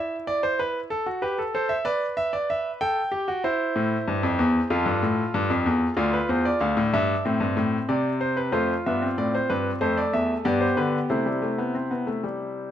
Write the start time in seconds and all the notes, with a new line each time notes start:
Already playing: E4 E5
0.27 D5
0.43 C5
0.59 B4
0.90 A4
1.06 F#4
1.22 G4 B4
1.38 A4
1.55 A4 C5
1.69 E5
1.85 B4 D5
2.17 E5
2.33 D5
2.50 E5
2.81 A4 G5
3.12 G4
3.28 F#4
3.44 E4 C5
3.76 A2
4.08 G2
4.23 F2
4.39 E2
4.70 F2 F4 A4
4.86 G2
5.03 A2
5.34 G2
5.50 F2
5.66 E2
5.97 D2 F4 D5
6.13 B4
6.29 E2 C5
6.45 D5
6.61 D2 D4 F5
6.77 A2
6.93 G2 E5
7.25 A2 C4
7.40 G2
7.57 A2
7.89 C3 D5
8.21 C5
8.37 B4
8.52 F2 A3 F4 C5
8.86 G2 B3 E5
9.02 C4
9.18 A2 D5
9.35 C5
9.50 G2 B4
9.81 F2 A3 A4 C5
9.97 D5
10.13 E2 E5
10.45 G2 B3 G4 D5
10.61 C5
10.77 D3 B4
11.10 C3 A3 E4 C5
11.26 G3
11.42 A3
11.58 B3
11.75 C4
11.91 B3
12.07 A3
12.24 G3